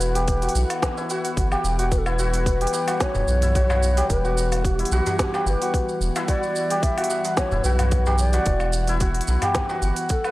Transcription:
Already playing: E1 E3 B3 E4 F#4 A4 B4 F#5
0.01 open hi-hat, shaker
0.15 G4, open hi-hat, shaker
0.28 kick, open hi-hat, shaker
0.42 F#4, open hi-hat, shaker
0.49 open hi-hat
0.55 B1, open hi-hat, shaker
0.70 open hi-hat, low woodblock, shaker
0.82 kick, snare, open hi-hat, shaker
0.97 E4, shaker
1.10 F#4, open hi-hat, shaker
1.25 open hi-hat, shaker
1.37 G1, kick, open hi-hat, shaker
1.52 G4, low woodblock, shaker
1.64 E1, shaker
1.79 F#4, open hi-hat, shaker
1.91 G3 B4, kick, open hi-hat, shaker
1.98 A4
2.06 E4 B4, low woodblock, shaker
2.19 F#4, shaker
2.34 open hi-hat, darbuka ka, shaker
2.46 kick, open hi-hat, shaker
2.61 G4, open hi-hat
2.67 open hi-hat
2.73 darbuka ka, darbuka tek, shaker
2.88 F#4, open hi-hat, darbuka ka, darbuka tek, low woodblock, shaker
3.00 C#5, kick, snare, open hi-hat, shaker
3.15 E1, darbuka dum, shaker
3.28 B1, darbuka tek, shaker
3.42 E4, open hi-hat, darbuka dum, shaker
3.55 F#4, kick, open hi-hat, shaker
3.69 darbuka ka, darbuka tek, darbuka dum, low woodblock, shaker
3.83 shaker
3.97 G4, open hi-hat, darbuka ka, darbuka tek, shaker
4.10 E1 B4, kick, open hi-hat, shaker
4.25 F#4, shaker
4.38 shaker
4.52 open hi-hat, darbuka ka, low woodblock, shaker
4.64 G4, kick, open hi-hat, shaker
4.79 E4, open hi-hat
4.85 open hi-hat
4.92 B1 F#4, darbuka ka, darbuka tek, shaker
5.06 open hi-hat, darbuka ka, darbuka tek, darbuka dum, shaker
5.19 kick, snare, open hi-hat, shaker
5.34 G4, darbuka ka, darbuka tek, low woodblock, shaker
5.46 G1 B4, shaker
5.62 F#4, open hi-hat, shaker
5.74 kick, open hi-hat, shaker
5.89 shaker
6.01 E1, shaker
6.16 E4, open hi-hat, darbuka tek, low woodblock, shaker
6.28 F#4 D5, kick, open hi-hat, shaker
6.43 shaker
6.56 shaker
6.70 G4, open hi-hat, darbuka ka, shaker
6.83 E5, kick, open hi-hat, shaker
6.98 F#4, open hi-hat, low woodblock
7.04 open hi-hat
7.10 darbuka ka, darbuka tek, shaker
7.25 open hi-hat, darbuka ka, darbuka tek, shaker
7.37 C#5, kick, snare, open hi-hat, shaker
7.51 E1 E4, darbuka dum, shaker
7.64 B1 F#4 B4, darbuka tek, shaker
7.79 open hi-hat, darbuka dum, low woodblock, shaker
7.92 kick, open hi-hat, shaker
8.06 G4, darbuka ka, darbuka tek, darbuka dum, shaker
8.18 D5, shaker
8.33 F#4, open hi-hat, darbuka ka, darbuka tek, shaker
8.46 E1, kick, open hi-hat, shaker
8.60 low woodblock, shaker
8.73 shaker
8.87 E4, open hi-hat, darbuka ka, shaker
9.00 F#4, kick, open hi-hat, shaker
9.14 open hi-hat
9.21 open hi-hat
9.28 B1, darbuka ka, darbuka tek, shaker
9.42 G4, open hi-hat, darbuka ka, darbuka tek, darbuka dum, low woodblock, shaker
9.55 kick, snare, open hi-hat, shaker
9.69 F#4, darbuka ka, darbuka tek, shaker
9.82 G1, open hi-hat, shaker
9.96 open hi-hat, shaker
10.09 A4, kick, open hi-hat, shaker
10.24 B4, low woodblock, shaker

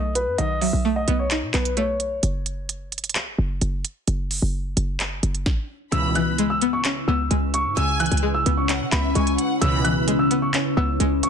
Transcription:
Already playing: B1 A3 B3 D#4 D#5
0.15 B4, closed hi-hat
0.27 F#2
0.38 B1 D#3 D#5, closed hi-hat
0.61 F#3 E5, open hi-hat
0.73 B1
0.85 A3
0.96 D#5
1.08 B1 B3, closed hi-hat
1.19 C#5
1.31 D#4, clap, closed hi-hat
1.42 B2
1.54 B1 B3 B4, clap, closed hi-hat
1.65 closed hi-hat
1.77 A3 C#5, closed hi-hat
2.00 closed hi-hat
2.23 F#1, closed hi-hat
2.46 closed hi-hat
2.69 closed hi-hat
2.92 closed hi-hat
2.98 closed hi-hat
3.04 closed hi-hat
3.09 closed hi-hat
3.15 C#2, clap, closed hi-hat
3.27 F#1
3.38 F#1
3.61 F#1, closed hi-hat
3.85 closed hi-hat
4.08 F#1, closed hi-hat
4.31 open hi-hat
4.42 F#1
4.77 F#1, closed hi-hat
5.00 clap, closed hi-hat
5.23 F#1, closed hi-hat
5.35 closed hi-hat
5.46 kick, snare
5.92 C#2 B2 C#3 E3 C#4 E4 B4 B5 E6, closed hi-hat
6.15 E3 F#6, closed hi-hat
6.38 G#3, closed hi-hat
6.50 E6
6.62 B3, closed hi-hat
6.73 C#6
6.85 C#4, clap, closed hi-hat
7.08 C#2 B3 E6
7.30 C#2 G#3, closed hi-hat
7.54 C#6, closed hi-hat
7.65 G#2
7.77 C#2 C#3 G#5 E6, closed hi-hat
8.00 E3 F#6, closed hi-hat
8.06 closed hi-hat
8.11 C#2, closed hi-hat
8.17 closed hi-hat
8.23 G#3
8.34 E6
8.46 C#2 B3, closed hi-hat
8.57 C#6
8.69 C#4 F#5, clap, closed hi-hat
8.81 C#3
8.92 C#2 B3 E5 B5, clap, closed hi-hat
9.15 C#2 G#3 G#5 C#6, closed hi-hat
9.27 closed hi-hat
9.38 F#5, closed hi-hat
9.61 C#2 B2 C#3 E3 B5 E6, closed hi-hat
9.84 E3 F#6, closed hi-hat
10.08 G#3, closed hi-hat
10.19 E6
10.31 B3, closed hi-hat
10.42 C#6
10.54 G#2 C#4, clap, closed hi-hat
10.65 C#2
10.77 C#2 B3 E6
11.00 C#2 G#3, closed hi-hat
11.23 C#6, closed hi-hat

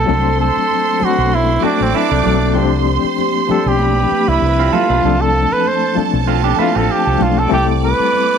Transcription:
Already playing: G3 C4 E4 G4 A4
0.06 C2 F#3 A3 C4 D4 A4 C5 C6, muted conga, low conga
0.41 A4
0.57 muted fingered electric bass stroke
0.71 high conga
0.99 F#3 A3 C4 D4 A4, muted fingered electric bass stroke, low conga
1.04 F#4
1.18 B1
1.32 E4, high conga
1.61 F#3 A3 C4 D4 F#4 A4 D5 D6, muted fingered electric bass stroke, muted conga, high conga
1.65 D4
1.80 A1 C4
1.95 B3 D4 E4, muted conga
2.11 C2 A3 D4
2.23 B1 F#3 A3 C4 D4 A4, muted conga, high conga, low conga
2.54 C2 F3 A3 C4 D4 G4 C5 C6, low conga
2.88 muted conga
3.04 muted fingered electric bass stroke
3.18 G4, muted conga, high conga
3.39 C5
3.47 F3 A3 C4 D4 G4 A4, muted fingered electric bass stroke, muted conga, low conga
3.59 D5
3.66 B1 G4
3.79 B4 B5, muted conga, high conga
4.11 muted fingered electric bass stroke, high conga
4.28 C2 E4
4.42 C2, muted conga
4.59 C4 F4
4.73 E4 F4 A4, muted conga, high conga, low conga
4.89 B1 A3 D4
5.02 C2 F3 A3 C4 D4 A4 A5, low conga
5.21 A4
5.36 high conga
5.52 B4, muted fingered electric bass stroke
5.66 C5, high conga
5.95 F3 A3 C4 D4 A4, muted fingered electric bass stroke, muted conga, low conga
6.13 B1
6.26 C4 F4 A4, high conga
6.44 D4 G4
6.56 F3 A3 B3 C4 D4 E4 A4, muted fingered electric bass stroke, muted conga, high conga
6.61 F4
6.75 A1 C4 F4 A4
6.91 G4
7.07 C2
7.19 B1 F3 A3 C4 D4 F4 A4, muted conga, high conga, low conga
7.39 A4
7.48 C2 G3 A3 C4 E4 A4 D5 D6, muted conga, low conga
7.53 G4
7.83 B4, muted conga
7.99 muted fingered electric bass stroke
8.13 high conga

